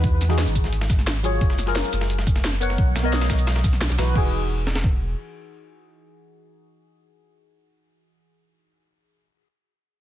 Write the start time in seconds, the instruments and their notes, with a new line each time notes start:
Already playing: sub bass E2, synth stab E3 D#4 F#4 G#4 B4
0.04 kick, closed hi-hat
0.21 snare, closed hi-hat, shaker
0.28 synth stab E3 D#4 F#4 G#4, snare
0.38 snare, closed hi-hat
0.47 sub bass G#1, shaker
0.55 kick, closed hi-hat, open hi-hat, shaker
0.64 snare
0.73 closed hi-hat
0.81 snare
0.90 kick, snare, closed hi-hat, shaker
0.99 snare
1.07 snare, closed hi-hat
1.16 snare
1.23 synth stab F#3 F4 G#4 C#5, closed hi-hat, open hi-hat, shaker
1.41 sub bass F#1, kick, closed hi-hat
1.50 snare
1.58 snare, closed hi-hat, shaker
1.66 synth stab F#3 F4 G#4 A#4, snare
1.76 snare, closed hi-hat
1.84 shaker
1.93 sub bass F#1, snare, closed hi-hat, open hi-hat, shaker
2.01 snare
2.10 closed hi-hat
2.19 snare
2.27 kick, closed hi-hat, shaker
2.36 snare
2.44 snare, closed hi-hat, open hi-hat
2.53 snare
2.60 synth stab B3 A#4 C#5 F#5, closed hi-hat, open hi-hat, shaker
2.70 snare
2.78 sub bass B1, kick, closed hi-hat
2.96 snare, closed hi-hat, open hi-hat, shaker
3.03 synth stab B3 A#4 C#5 D#5
3.13 snare, closed hi-hat
3.21 snare, open hi-hat, shaker
3.30 kick, snare, closed hi-hat, open hi-hat, shaker
3.39 closed hi-hat, shaker
3.47 snare, closed hi-hat
3.56 snare
3.64 kick, snare, closed hi-hat, shaker
3.73 snare
3.81 snare, closed hi-hat
3.90 sub bass B1, snare, shaker
3.98 sub bass B1, synth stab E3 D#4 F#4 B4, snare, closed hi-hat, open hi-hat, shaker
4.14 sub bass E1, synth stab E3 D#4 F#4 G#4, kick, crash
4.67 snare
4.75 snare
4.84 kick